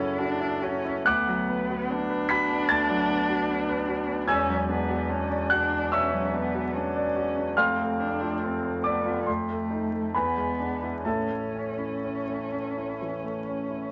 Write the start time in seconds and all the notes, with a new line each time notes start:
Already playing: C#3 F#3 C#4 F#4 A4 B4 F#5 A5 B5
0.00 E4
0.19 D4 F#4
0.40 E4
0.62 C#4 F#4
0.85 E4
1.06 D2 B3 F#5 D6 F#6
1.28 F#3
1.49 B3
1.70 F#4
1.90 B3 D4
2.10 B4
2.29 F#4 B5 B6
2.50 B3
2.69 D2 A5 A6
2.90 F#3
3.09 B3
3.29 F#4
3.49 B3
3.69 B4
3.88 F#4
4.08 B3
4.28 E1 E2 C#4 G#5 E6 G#6
4.48 F#3
4.68 B3 D4
4.89 F#4
5.10 C#4 D4
5.31 D5
5.50 D4 F#4 F#5 F#6
5.73 D4
5.92 B2 C#4 E5 C#6 E6
6.13 F#3
6.34 B3 D4
6.54 F#4
6.74 C#4 D4
6.96 D5
7.16 F#4
7.37 D4
7.57 F1 F2 C4 F5 C6 F6
7.79 A3
8.00 C4 D4
8.21 F4
8.41 C4 A4
8.64 C5
8.84 B3 A4 D5 D6
9.05 F4
9.27 F2 A3 C5 C6
9.50 A3
9.70 D#4
9.93 A3
10.14 E2 B3 B4 G#5 B5
10.37 G#3
10.60 D4
10.83 E4
11.05 A1 A2 C#4 A4 E5 A5
11.30 A3
11.55 C#4
11.79 E4
12.04 C#4
12.28 A3
12.53 C#4
12.78 E4
13.02 E3
13.24 A3
13.48 C#4
13.70 E4